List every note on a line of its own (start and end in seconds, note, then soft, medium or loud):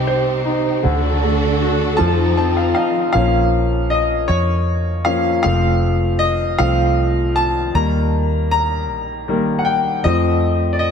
0.00 0.81 C2 medium
0.00 0.80 C3 medium
0.00 0.83 C3 medium
0.00 0.41 G3 medium
0.00 0.83 C4 medium
0.00 0.43 D#4 medium
0.00 0.81 D#4 medium
0.00 0.81 G4 medium
0.07 0.82 C5 medium
0.45 0.83 D#4 medium
0.83 1.96 D2 medium
0.83 1.96 D3 medium
0.83 1.99 D3 medium
0.83 1.98 D4 medium
0.83 1.98 F#4 medium
0.83 3.12 A4 medium
1.23 1.98 A3 soft
1.62 1.99 F#4 medium
1.97 2.73 F2 medium
1.97 3.11 F3 medium
1.97 3.13 F3 medium
1.97 3.14 C4 medium
1.97 3.14 D#4 medium
1.97 2.36 A5 medium
2.37 3.12 C4 medium
2.37 2.56 A5 medium
2.57 2.73 F5 medium
2.75 3.13 D#4 medium
2.75 3.12 D#5 medium
2.75 2.83 F5 medium
3.13 4.26 A#1 loud
3.13 3.65 F3 medium
3.13 3.66 A#3 soft
3.13 3.66 C#4 medium
3.13 3.86 F5 medium
3.90 3.99 D#5 medium
4.28 5.40 F2 medium
4.28 5.08 C#5 medium
5.05 5.40 F3 medium
5.05 5.41 A#3 soft
5.05 5.41 C#4 medium
5.05 5.41 F5 medium
5.43 6.56 F1 loud
5.43 6.55 F3 medium
5.43 6.55 A3 medium
5.43 6.56 C4 medium
5.43 6.23 F5 medium
6.19 6.56 D#5 loud
6.58 7.70 C2 medium
6.58 6.93 F3 medium
6.58 6.94 A3 soft
6.58 6.94 C4 medium
6.58 7.38 F5 loud
7.36 7.75 A5 loud
7.75 8.91 D#2 loud
7.75 9.26 D#3 medium
7.75 9.27 G3 medium
7.75 9.28 A#3 medium
7.75 8.50 A#5 loud
8.51 9.23 A#5 loud
8.91 10.00 A#1 loud
9.28 9.62 D#3 medium
9.28 9.62 G3 medium
9.28 9.63 A#3 medium
9.59 9.65 F#5 medium
9.65 10.01 G5 medium
10.04 10.91 F2 loud
10.04 10.55 F3 medium
10.04 10.55 A3 soft
10.04 10.55 C4 medium
10.04 10.75 D#5 medium
10.73 10.80 D5 medium
10.79 10.91 D#5 medium